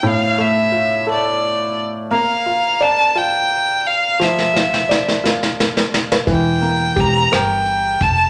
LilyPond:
<<
  \new Staff \with { instrumentName = "Violin" } { \time 6/8 \key bes \lydian \tempo 4. = 58 f''8 e''4 d''4 r8 | f''4 a''8 g''4 f''8 | e''4. r4. | g''4 bes''8 g''4 a''8 | }
  \new Staff \with { instrumentName = "Grand piano" } { \time 6/8 \key bes \lydian <a, a'>8 a8 f'8 a'4. | bes8 f'8 d''8 f'4. | f8 f'8 d''8 f'4. | e8 bes8 g'8 bes'4. | }
  \new Staff \with { instrumentName = "Upright bass" } { \clef bass \time 6/8 \key bes \lydian r2. | r2. | r2. | e,,4 e,,8 g,,4 f,,8 | }
  \new DrumStaff \with { instrumentName = "Drums" } \drummode { \time 6/8 r4. r4. | r4. r4. | sn16 sn16 sn16 sn16 sn16 sn16 sn16 sn16 sn16 sn16 sn16 sn16 | <hh bd>8 hh8 <hh bd ss>8 <hh ss>8 hh8 <hh bd>8 | }
>>